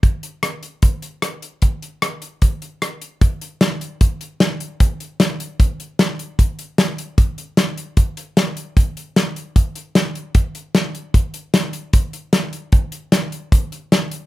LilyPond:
\new DrumStaff \with { instrumentName = "Drums" } \drummode { \time 4/4 \tempo 4 = 151 <hh bd>8 hh8 <hh ss>8 hh8 <hh bd>8 hh8 <hh ss>8 hh8 | <hh bd>8 hh8 <hh ss>8 hh8 <hh bd>8 hh8 <hh ss>8 hh8 | <hh bd>8 hh8 <hh sn>8 hh8 <hh bd>8 hh8 <hh sn>8 hh8 | <hh bd>8 hh8 <hh sn>8 hh8 <hh bd>8 hh8 <hh sn>8 hh8 |
<hh bd>8 hh8 <hh sn>8 hh8 <hh bd>8 hh8 <hh sn>8 hh8 | <hh bd>8 hh8 <hh sn>8 hh8 <hh bd>8 hh8 <hh sn>8 hh8 | <hh bd>8 hh8 <hh sn>8 hh8 <hh bd>8 hh8 <hh sn>8 hh8 | <hh bd>8 hh8 <hh sn>8 hh8 <hh bd>8 hh8 <hh sn>8 hh8 |
<hh bd>8 hh8 <hh sn>8 hh8 <hh bd>8 hh8 <hh sn>8 hh8 | }